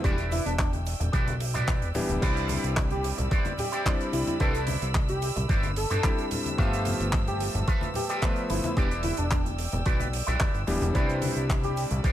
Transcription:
0.04 E1 E3 G3 B3 D4 E4 G4 B4 D5 G5 E6, kick, closed hi-hat, shaker
0.18 closed hi-hat, shaker
0.31 E4, open hi-hat, high conga, shaker
0.45 E1 D4, closed hi-hat, shaker
0.59 D4, kick, clap, closed hi-hat, shaker
0.73 closed hi-hat, high conga, shaker
0.86 open hi-hat, shaker
1.00 E1, muted clean electric guitar stroke, closed hi-hat, low conga, shaker
1.12 B1 E4 G4 B4 D5, kick, closed hi-hat, shaker
1.27 closed hi-hat, high conga, shaker
1.40 open hi-hat, shaker
1.54 E4 G4 B4 D5, closed hi-hat, low conga, shaker
1.67 kick, clap, closed hi-hat, high conga, shaker
1.82 E1, closed hi-hat, shaker
1.95 E3 G3 B3 D4 G4, open hi-hat, low conga, shaker
2.09 D1, closed hi-hat, high conga, shaker
2.21 C2 G3 C4 D4 E4 B4 C5 D5 B5, kick, closed hi-hat, crash, shaker
2.37 closed hi-hat, shaker
2.48 open hi-hat, high conga, shaker
2.64 C2, closed hi-hat, shaker
2.77 kick, clap, closed hi-hat, shaker
2.90 G4, closed hi-hat, high conga, shaker
3.04 open hi-hat, shaker
3.18 C2, muted clean electric guitar stroke, closed hi-hat, low conga, shaker
3.31 E4 B4 C5 D5, kick, closed hi-hat, shaker
3.45 closed hi-hat, high conga, shaker
3.58 G4, open hi-hat, low conga, shaker
3.72 E4 G4 B4 C5 D5, closed hi-hat, shaker
3.85 G3 C4 D4 E4 D5, kick, clap, closed hi-hat, high conga, shaker
3.99 closed hi-hat, shaker
4.13 C2 E4, open hi-hat, shaker
4.27 E4, closed hi-hat, high conga, shaker
4.40 C2 G3 C4 D4 E4 A4 B4 C5 D5, kick, closed hi-hat, shaker
4.54 closed hi-hat, shaker
4.67 open hi-hat, high conga, shaker
4.82 C2, closed hi-hat, shaker
4.94 kick, clap, closed hi-hat, shaker
5.09 G4, closed hi-hat, high conga, shaker
5.22 open hi-hat, shaker
5.36 C2, muted clean electric guitar stroke, closed hi-hat, low conga, shaker
5.49 G1 E4 B4 C5 D5, kick, closed hi-hat, shaker
5.63 closed hi-hat, high conga, shaker
5.76 A4, open hi-hat, shaker
5.90 G1 E4 B4 C5 D5, closed hi-hat, low conga, shaker
6.03 G3 C4 D4 E4 B5, kick, clap, closed hi-hat, high conga, shaker
6.18 closed hi-hat, shaker
6.31 open hi-hat, low conga, shaker
6.44 closed hi-hat, high conga, shaker
6.58 G1 F3 A3 B3 F4 G4 A4 B4 E5 A5, kick, closed hi-hat, shaker
6.73 closed hi-hat, shaker
6.85 open hi-hat, high conga, shaker
7.00 G1, closed hi-hat, shaker
7.13 kick, clap, closed hi-hat, shaker
7.27 G4, closed hi-hat, high conga, shaker
7.40 open hi-hat, shaker
7.54 G1, muted clean electric guitar stroke, closed hi-hat, low conga, shaker
7.68 F4 A4 B4 E5, kick, closed hi-hat, shaker
7.81 closed hi-hat, high conga, shaker
7.94 G4, open hi-hat, low conga, shaker
8.09 F4 G4 A4 B4 D5, closed hi-hat, shaker
8.22 F3 A3 B3 B4 E5, kick, clap, closed hi-hat, high conga, shaker
8.36 closed hi-hat, shaker
8.50 G1 E4, open hi-hat, shaker
8.64 E4, closed hi-hat, high conga, shaker
8.77 E1 E3 G3 B3 D4 E4 G4 B4 D5 G5, kick, closed hi-hat, shaker
8.91 closed hi-hat, shaker
9.03 E4, open hi-hat, high conga, shaker
9.17 E1 D4, closed hi-hat, shaker
9.31 D4, kick, clap, closed hi-hat, shaker
9.45 closed hi-hat, high conga, shaker
9.58 open hi-hat, shaker
9.72 E1, muted clean electric guitar stroke, closed hi-hat, low conga, shaker
9.86 B1 E4 G4 B4 D5, kick, closed hi-hat, shaker
10.00 closed hi-hat, high conga, shaker
10.13 open hi-hat, shaker
10.27 B1 E4 G4 B4 D5, closed hi-hat, low conga, shaker
10.40 kick, clap, closed hi-hat, high conga, shaker
10.54 G1, closed hi-hat, shaker
10.67 D1 E3 G3 B3 D4 G4, open hi-hat, low conga, shaker
10.82 E1, closed hi-hat, high conga, shaker
10.94 C2 G3 C4 D4 E4 B4 C5 D5 B5, kick, closed hi-hat, shaker
11.09 closed hi-hat, shaker
11.22 open hi-hat, high conga, shaker
11.36 C2, closed hi-hat, shaker
11.50 kick, clap, closed hi-hat, shaker
11.63 G4, closed hi-hat, high conga, shaker
11.77 open hi-hat, shaker
11.91 C2, muted clean electric guitar stroke, closed hi-hat, low conga, shaker
12.04 E4 B4 C5 D5, kick, closed hi-hat, shaker

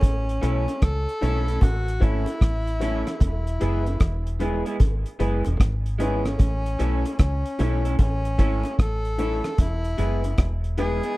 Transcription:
Already playing: C#4
0.01 A1, kick, closed hi-hat, high bongo
0.29 closed hi-hat
0.41 B1 A3 C#4 E4 A4 C#5, closed hi-hat
0.68 closed hi-hat, high bongo
0.82 C#2 A4, kick, cross-stick, closed hi-hat
1.09 closed hi-hat
1.21 B1 A3 C#4 E4 A4 C#5, closed hi-hat, low bongo
1.47 A3 C#4 E4 A4, closed hi-hat
1.61 A1 F#4, kick, closed hi-hat, high bongo
1.88 closed hi-hat
2.00 G#1 A3 C#4 E4 A4 C#5, kick, closed hi-hat
2.04 E4
2.26 closed hi-hat, high bongo
2.41 A1, kick, cross-stick, closed hi-hat
2.67 closed hi-hat
2.80 A3 C#4 E4 A4 C#5, closed hi-hat, low bongo
3.07 cross-stick, closed hi-hat, high bongo
3.20 E1 E4, kick, closed hi-hat, high bongo
3.47 closed hi-hat
3.60 F#1 G#3 B3 E4 G#4 B4, closed hi-hat
3.86 closed hi-hat, high bongo
4.00 E1, kick, cross-stick, closed hi-hat
4.27 closed hi-hat
4.39 G#3 B3 E4 G#4 B4, closed hi-hat, low bongo
4.65 G#3 B3 E4 G#4, closed hi-hat
4.80 G#1, kick, closed hi-hat, high bongo
5.06 closed hi-hat
5.19 F#1 G#3 B3 E4 G#4 B4, closed hi-hat
5.45 E1, closed hi-hat, high bongo
5.60 G#1, kick, cross-stick, closed hi-hat
5.86 closed hi-hat
5.99 G#3 B3 C#4 E4 G#4 B4, closed hi-hat, low bongo
6.25 cross-stick, closed hi-hat, high bongo
6.39 A1, kick, closed hi-hat, high bongo
6.66 closed hi-hat
6.79 B1 A3 C#4 E4 A4 C#5, closed hi-hat
7.05 closed hi-hat, high bongo
7.19 C#2 C#4, kick, cross-stick, closed hi-hat
7.46 closed hi-hat
7.59 B1 A3 C#4 E4 A4 C#5, closed hi-hat, low bongo
7.85 A3 C#4 E4 A4, closed hi-hat
7.99 A1 C#4, kick, closed hi-hat, high bongo
8.25 closed hi-hat
8.38 G#1 A3 C#4 E4 A4 C#5, kick, closed hi-hat
8.64 closed hi-hat, high bongo
8.79 A1 A4, kick, cross-stick, closed hi-hat
9.05 closed hi-hat
9.18 A3 C#4 E4 A4 C#5, closed hi-hat, low bongo
9.44 cross-stick, closed hi-hat, high bongo
9.58 E1 E4, kick, closed hi-hat, high bongo
9.84 closed hi-hat
9.97 F#1 G#3 B3 E4 G#4 B4, closed hi-hat
10.24 closed hi-hat, high bongo
10.38 E1, kick, cross-stick, closed hi-hat
10.64 closed hi-hat
10.77 G#3 B3 E4 G#4 B4, closed hi-hat, low bongo
11.03 G#3 B3 E4 G#4, closed hi-hat

